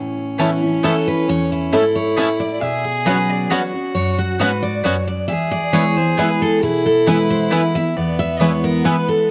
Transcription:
0.00 0.80 A2 medium
0.00 1.74 C#4 loud
0.38 0.61 E3 medium
0.38 0.50 A3 medium
0.38 0.48 B3 medium
0.38 0.62 B3 loud
0.38 0.50 C#4 medium
0.38 0.62 C#4 loud
0.38 0.48 E4 medium
0.38 0.50 E4 medium
0.38 0.61 E4 loud
0.38 0.49 C#5 medium
0.38 0.49 A5 medium
0.62 0.84 C#4 soft
0.62 0.83 E4 medium
0.83 1.26 E3 medium
0.83 0.94 A3 medium
0.83 0.93 B3 medium
0.83 1.26 B3 medium
0.83 0.94 C#4 medium
0.83 1.27 C#4 medium
0.83 0.93 E4 loud
0.83 0.94 E4 medium
0.83 1.27 E4 medium
0.83 1.06 A4 medium
0.83 0.93 C#5 medium
0.83 0.93 A5 medium
1.08 1.28 B4 medium
1.28 1.73 E2 medium
1.28 1.51 C#5 loud
1.52 1.72 E4 medium
1.72 2.15 G#2 medium
1.72 1.83 A3 medium
1.72 1.82 B3 medium
1.72 1.83 C#4 medium
1.72 1.82 E4 medium
1.72 2.61 E4 loud
1.72 1.83 E4 medium
1.72 1.95 A4 medium
1.72 1.82 C#5 medium
1.72 1.83 A5 medium
1.96 2.16 C#5 medium
2.16 2.60 A2 medium
2.16 2.28 A3 medium
2.16 2.26 B3 medium
2.16 2.28 C#4 medium
2.16 2.27 E4 medium
2.16 2.28 E4 medium
2.16 2.39 C#5 medium
2.16 2.27 C#5 medium
2.16 2.27 A5 loud
2.40 2.61 D5 medium
2.61 3.47 B2 medium
2.61 3.52 G#4 loud
2.61 2.84 E5 medium
2.84 3.06 G#4 medium
3.05 3.48 F#3 medium
3.05 3.15 B3 medium
3.05 3.49 B3 loud
3.05 3.17 B3 medium
3.05 3.49 C#4 loud
3.05 3.17 C#4 medium
3.05 3.15 F#4 medium
3.05 3.49 F#4 loud
3.05 3.17 F#4 medium
3.05 3.29 B4 medium
3.05 3.16 C#5 medium
3.05 3.16 F#5 loud
3.29 3.51 D5 loud
3.50 3.73 F#3 medium
3.50 3.60 B3 medium
3.50 3.73 B3 medium
3.50 3.61 B3 medium
3.50 3.73 C#4 medium
3.50 3.62 C#4 medium
3.50 3.60 F#4 loud
3.50 4.40 F#4 loud
3.50 3.62 F#4 medium
3.50 3.60 C#5 medium
3.50 3.65 C#5 loud
3.50 3.60 F#5 medium
3.73 3.95 C#4 soft
3.73 3.94 F#4 medium
3.95 4.40 F#2 medium
3.95 4.18 C#5 medium
4.18 4.39 F#4 medium
4.39 4.83 G#2 medium
4.39 4.49 B3 medium
4.39 4.51 B3 medium
4.39 4.51 C#4 medium
4.39 4.49 F#4 medium
4.39 5.04 F#4 medium
4.39 4.51 F#4 medium
4.39 4.62 B4 medium
4.39 4.50 C#5 medium
4.39 4.50 F#5 medium
4.63 4.84 D5 loud
4.84 5.27 F#2 medium
4.84 4.94 B3 medium
4.84 4.95 B3 medium
4.84 4.95 C#4 medium
4.84 4.94 F#4 medium
4.84 4.95 F#4 medium
4.84 4.94 C#5 loud
4.84 5.07 C#5 medium
4.84 4.94 F#5 medium
5.07 5.28 D5 medium
5.28 6.14 E2 medium
5.28 6.64 G#4 loud
5.28 5.51 E5 loud
5.51 5.73 D5 medium
5.73 5.95 E3 medium
5.73 5.96 G#3 medium
5.73 5.83 B3 medium
5.73 5.84 B3 medium
5.73 5.96 B3 loud
5.73 5.83 E4 medium
5.73 5.84 E4 medium
5.73 5.95 E4 medium
5.73 5.83 B4 medium
5.73 5.97 C#5 medium
5.73 5.83 G#5 medium
5.96 6.17 B3 soft
5.96 6.17 E4 medium
5.96 6.18 C5 medium
6.17 6.60 E3 medium
6.17 6.61 G#3 medium
6.17 6.27 B3 medium
6.17 6.61 B3 medium
6.17 6.29 B3 medium
6.17 6.27 E4 medium
6.17 6.29 E4 medium
6.17 6.61 E4 medium
6.17 6.27 B4 loud
6.17 6.41 B4 medium
6.17 6.28 G#5 medium
6.42 6.62 A4 medium
6.63 7.47 B2 medium
6.63 7.98 E4 loud
6.63 6.85 G#4 medium
6.86 7.07 A4 medium
7.06 7.49 E3 loud
7.06 7.50 G#3 loud
7.06 7.16 B3 medium
7.06 7.18 B3 medium
7.06 7.50 B3 loud
7.06 7.16 E4 medium
7.06 7.18 E4 medium
7.06 7.50 E4 loud
7.06 7.30 B4 medium
7.06 7.17 B4 medium
7.06 7.17 G#5 loud
7.30 7.52 C5 loud
7.51 7.74 E3 medium
7.51 7.74 G#3 medium
7.51 7.61 B3 medium
7.51 7.62 B3 medium
7.51 7.75 B3 medium
7.51 7.61 E4 medium
7.51 7.62 E4 medium
7.51 7.74 E4 medium
7.51 7.74 B4 medium
7.51 7.61 B4 loud
7.51 7.61 G#5 medium
7.75 7.96 B3 medium
7.75 7.95 E4 medium
7.75 7.97 E5 loud
7.96 8.81 E2 loud
7.96 9.31 B3 loud
7.96 8.19 D5 medium
8.19 8.40 E5 loud
8.40 8.83 E3 loud
8.40 8.83 G#3 medium
8.40 8.50 B3 medium
8.40 8.51 B3 medium
8.40 8.83 B3 loud
8.40 8.50 E4 medium
8.40 8.51 E4 medium
8.40 8.84 E4 loud
8.40 8.50 B4 medium
8.40 8.63 C#5 medium
8.40 8.50 G#5 medium
8.64 8.84 A#4 medium
8.84 9.27 E3 medium
8.84 9.27 G#3 medium
8.84 8.94 B3 medium
8.84 8.95 B3 medium
8.84 9.28 B3 medium
8.84 8.94 E4 medium
8.84 8.96 E4 medium
8.84 9.28 E4 medium
8.84 8.95 B4 medium
8.84 9.08 B4 loud
8.84 8.95 G#5 loud
9.09 9.29 A4 medium

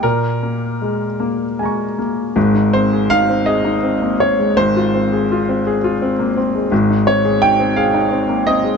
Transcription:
0.03 2.32 A#2 medium
0.03 1.98 A#4 medium
0.43 1.05 A#3 soft
0.82 1.44 G#3 soft
1.20 1.82 A#3 soft
1.59 1.98 G#3 soft
1.59 2.32 G#5 soft
1.59 2.34 A#5 soft
1.65 2.35 C#6 soft
1.99 2.36 A#3 soft
2.36 4.52 G#1 medium
2.36 4.52 G#2 medium
2.55 2.84 D#4 soft
2.73 3.03 C4 medium
2.73 3.10 C5 medium
2.93 3.22 G#4 medium
3.10 3.40 D#4 medium
3.10 3.47 F5 loud
3.30 3.58 C4 medium
3.46 3.76 G#4 medium
3.46 4.20 D#5 medium
3.65 3.94 D#4 medium
3.83 4.13 C4 medium
4.02 4.20 A#3 soft
4.20 4.49 C4 soft
4.20 4.56 C#5 medium
4.39 4.57 G#3 soft
4.57 6.67 G#1 medium
4.57 6.68 G#2 medium
4.57 6.36 C5 loud
4.77 5.04 F4 medium
4.95 5.22 C4 medium
5.13 5.40 G#4 soft
5.32 5.59 F4 medium
5.49 5.76 C4 medium
5.67 5.94 G#4 medium
5.84 6.12 F4 medium
6.02 6.30 C4 medium
6.19 6.36 A#3 medium
6.37 6.65 C4 medium
6.55 6.72 G#3 medium
6.72 8.77 G#1 medium
6.72 8.77 G#2 medium
6.90 7.18 D#4 soft
7.07 7.35 C4 medium
7.07 7.42 C#5 medium
7.25 7.52 G#4 medium
7.42 7.70 D#4 medium
7.42 7.77 G5 loud
7.59 7.87 C4 medium
7.76 8.05 G#4 medium
7.76 8.47 F5 medium
7.94 8.22 D#4 medium
8.11 8.40 C4 medium
8.29 8.47 A#3 medium
8.47 8.75 C4 medium
8.47 8.77 D#5 medium
8.64 8.77 G#3 medium

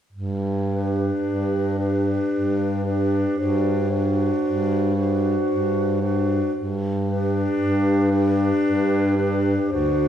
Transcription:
0.12 1.11 G2 soft
0.69 1.76 D4 soft
0.69 1.77 G4 soft
0.69 1.76 B4 soft
1.24 2.19 G2 soft
1.78 2.82 D4 soft
1.78 2.83 G4 soft
1.78 2.83 B4 soft
2.31 3.25 G2 soft
2.83 3.36 D4 soft
2.83 3.37 G4 soft
2.83 3.37 B4 soft
3.38 4.31 G2 soft
3.38 3.89 D4 soft
3.38 3.89 F#4 soft
3.38 3.89 C5 soft
3.89 4.93 D4 soft
3.89 4.93 F#4 soft
3.89 4.93 C5 soft
4.43 5.36 G2 soft
4.94 5.99 D4 soft
4.94 5.98 F#4 soft
4.94 6.00 C5 soft
5.49 6.41 G2 soft
6.01 6.53 D4 soft
6.01 6.53 F#4 soft
6.01 6.53 C5 soft
6.55 7.47 G2 soft
7.06 8.09 D4 soft
7.06 8.09 G4 soft
7.06 8.09 B4 soft
7.59 8.51 G2 soft
8.12 9.15 D4 soft
8.12 9.15 G4 soft
8.12 9.15 B4 soft
8.63 9.57 G2 soft
9.16 9.69 D4 soft
9.16 9.70 G4 soft
9.16 9.69 B4 soft
9.70 10.08 D2 soft
9.70 10.08 D4 soft
9.70 10.08 F#4 soft
9.70 10.08 C5 soft

